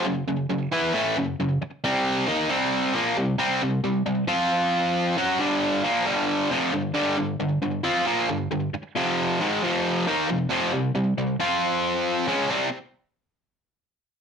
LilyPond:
\new Staff \with { instrumentName = "Distorted electric guitar" } { \clef bass \time 4/4 \key g \dorian \tempo 4 = 135 <fis, cis>8 <fis, cis>8 <fis, cis>8 <e b e'>8 <a, e a>8 <fis, cis>8 <fis, cis>8 r8 | <c g c'>4 <ees bes ees'>8 <c g c'>4 <bes, f bes>8 <c g>8 <c g c'>8 | <c g>8 <c g>8 <c g>8 <f c' f'>2 <fis cis' fis'>8 | <g, d g>4 <bes, f bes>8 <g, d g>4 <f, c f>8 <g, d>8 <g, d g>8 |
<g, d>8 <g, d>8 <g, d>8 <f c' f'>8 <bes, f bes>8 <g, d>8 <g, d>8 r8 | <f, c f>4 <aes, ees aes>8 <f, c f>4 <ees bes ees'>8 <f, c>8 <f, c f>8 | <c g>8 <c g>8 <c g>8 <f c' f'>2 <des aes des'>8 | <c g c'>8 r2. r8 | }